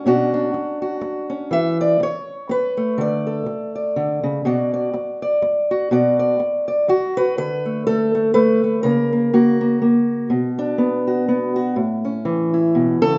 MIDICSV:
0, 0, Header, 1, 3, 480
1, 0, Start_track
1, 0, Tempo, 487805
1, 55, Time_signature, 3, 2, 24, 8
1, 12971, End_track
2, 0, Start_track
2, 0, Title_t, "Steel-string acoustic guitar"
2, 0, Program_c, 0, 25
2, 55, Note_on_c, 0, 47, 64
2, 63, Note_on_c, 0, 61, 64
2, 69, Note_on_c, 0, 62, 59
2, 76, Note_on_c, 0, 66, 71
2, 320, Note_off_c, 0, 62, 0
2, 331, Note_on_c, 0, 62, 61
2, 518, Note_off_c, 0, 47, 0
2, 793, Note_off_c, 0, 66, 0
2, 805, Note_on_c, 0, 66, 63
2, 1264, Note_off_c, 0, 61, 0
2, 1276, Note_on_c, 0, 61, 57
2, 1465, Note_off_c, 0, 61, 0
2, 1473, Note_off_c, 0, 62, 0
2, 1484, Note_on_c, 0, 52, 64
2, 1495, Note_off_c, 0, 66, 0
2, 1503, Note_on_c, 0, 76, 100
2, 1771, Note_off_c, 0, 76, 0
2, 1779, Note_on_c, 0, 74, 100
2, 1956, Note_off_c, 0, 52, 0
2, 1981, Note_off_c, 0, 74, 0
2, 1998, Note_on_c, 0, 73, 90
2, 2471, Note_on_c, 0, 71, 88
2, 2729, Note_on_c, 0, 57, 52
2, 2929, Note_on_c, 0, 50, 70
2, 2944, Note_off_c, 0, 71, 0
2, 2947, Note_off_c, 0, 73, 0
2, 2962, Note_on_c, 0, 74, 81
2, 3214, Note_on_c, 0, 69, 48
2, 3396, Note_off_c, 0, 50, 0
2, 3683, Note_off_c, 0, 74, 0
2, 3695, Note_on_c, 0, 74, 47
2, 3899, Note_on_c, 0, 50, 70
2, 4163, Note_off_c, 0, 50, 0
2, 4167, Note_on_c, 0, 49, 73
2, 4354, Note_off_c, 0, 69, 0
2, 4375, Note_off_c, 0, 49, 0
2, 4376, Note_off_c, 0, 57, 0
2, 4379, Note_on_c, 0, 47, 71
2, 4386, Note_on_c, 0, 66, 58
2, 4392, Note_off_c, 0, 74, 0
2, 4396, Note_on_c, 0, 74, 66
2, 4656, Note_off_c, 0, 74, 0
2, 4660, Note_on_c, 0, 74, 60
2, 4857, Note_off_c, 0, 47, 0
2, 5135, Note_off_c, 0, 74, 0
2, 5139, Note_on_c, 0, 74, 58
2, 5606, Note_off_c, 0, 66, 0
2, 5618, Note_on_c, 0, 66, 62
2, 5796, Note_off_c, 0, 66, 0
2, 5815, Note_on_c, 0, 47, 67
2, 5823, Note_on_c, 0, 66, 56
2, 5829, Note_off_c, 0, 74, 0
2, 5833, Note_on_c, 0, 74, 66
2, 6083, Note_off_c, 0, 74, 0
2, 6095, Note_on_c, 0, 74, 61
2, 6285, Note_off_c, 0, 47, 0
2, 6560, Note_off_c, 0, 74, 0
2, 6572, Note_on_c, 0, 74, 63
2, 6772, Note_off_c, 0, 66, 0
2, 6780, Note_off_c, 0, 74, 0
2, 6784, Note_on_c, 0, 66, 89
2, 7050, Note_off_c, 0, 66, 0
2, 7055, Note_on_c, 0, 71, 100
2, 7061, Note_on_c, 0, 66, 57
2, 7237, Note_off_c, 0, 66, 0
2, 7250, Note_off_c, 0, 71, 0
2, 7258, Note_on_c, 0, 50, 62
2, 7264, Note_on_c, 0, 71, 105
2, 7533, Note_on_c, 0, 57, 40
2, 7729, Note_off_c, 0, 57, 0
2, 7737, Note_off_c, 0, 71, 0
2, 7741, Note_on_c, 0, 57, 58
2, 7741, Note_on_c, 0, 69, 92
2, 8006, Note_off_c, 0, 57, 0
2, 8017, Note_on_c, 0, 57, 49
2, 8202, Note_off_c, 0, 69, 0
2, 8204, Note_off_c, 0, 57, 0
2, 8206, Note_on_c, 0, 71, 97
2, 8216, Note_on_c, 0, 57, 65
2, 8487, Note_off_c, 0, 57, 0
2, 8500, Note_on_c, 0, 57, 46
2, 8672, Note_off_c, 0, 50, 0
2, 8684, Note_off_c, 0, 71, 0
2, 8688, Note_on_c, 0, 70, 94
2, 8700, Note_on_c, 0, 49, 70
2, 8701, Note_off_c, 0, 57, 0
2, 8709, Note_on_c, 0, 58, 45
2, 8969, Note_off_c, 0, 58, 0
2, 8980, Note_on_c, 0, 58, 42
2, 9173, Note_off_c, 0, 58, 0
2, 9185, Note_on_c, 0, 58, 61
2, 9189, Note_on_c, 0, 66, 73
2, 9442, Note_off_c, 0, 58, 0
2, 9454, Note_on_c, 0, 58, 47
2, 9648, Note_off_c, 0, 58, 0
2, 9652, Note_off_c, 0, 70, 0
2, 9660, Note_on_c, 0, 58, 65
2, 10113, Note_off_c, 0, 58, 0
2, 10114, Note_off_c, 0, 49, 0
2, 10133, Note_on_c, 0, 47, 70
2, 10143, Note_off_c, 0, 66, 0
2, 10416, Note_on_c, 0, 62, 61
2, 10609, Note_on_c, 0, 59, 60
2, 10897, Note_on_c, 0, 66, 60
2, 11093, Note_off_c, 0, 59, 0
2, 11104, Note_on_c, 0, 59, 66
2, 11362, Note_off_c, 0, 66, 0
2, 11374, Note_on_c, 0, 66, 65
2, 11554, Note_off_c, 0, 66, 0
2, 11555, Note_off_c, 0, 59, 0
2, 11556, Note_off_c, 0, 62, 0
2, 11572, Note_on_c, 0, 45, 62
2, 11576, Note_off_c, 0, 47, 0
2, 11854, Note_on_c, 0, 61, 42
2, 12055, Note_on_c, 0, 52, 63
2, 12336, Note_on_c, 0, 64, 46
2, 12545, Note_on_c, 0, 47, 64
2, 12803, Note_off_c, 0, 47, 0
2, 12807, Note_on_c, 0, 49, 68
2, 12811, Note_on_c, 0, 69, 104
2, 12971, Note_off_c, 0, 45, 0
2, 12971, Note_off_c, 0, 49, 0
2, 12971, Note_off_c, 0, 52, 0
2, 12971, Note_off_c, 0, 61, 0
2, 12971, Note_off_c, 0, 64, 0
2, 12971, Note_off_c, 0, 69, 0
2, 12971, End_track
3, 0, Start_track
3, 0, Title_t, "Muted steel-string acoustic guitar strokes"
3, 530, Note_on_c, 9, 29, 59
3, 628, Note_off_c, 9, 29, 0
3, 996, Note_on_c, 9, 29, 74
3, 1095, Note_off_c, 9, 29, 0
3, 1965, Note_on_c, 9, 29, 61
3, 2064, Note_off_c, 9, 29, 0
3, 2453, Note_on_c, 9, 29, 78
3, 2551, Note_off_c, 9, 29, 0
3, 3408, Note_on_c, 9, 29, 65
3, 3506, Note_off_c, 9, 29, 0
3, 4856, Note_on_c, 9, 29, 69
3, 4954, Note_off_c, 9, 29, 0
3, 5335, Note_on_c, 9, 29, 81
3, 5434, Note_off_c, 9, 29, 0
3, 6293, Note_on_c, 9, 29, 67
3, 6391, Note_off_c, 9, 29, 0
3, 6772, Note_on_c, 9, 29, 68
3, 6870, Note_off_c, 9, 29, 0
3, 12971, End_track
0, 0, End_of_file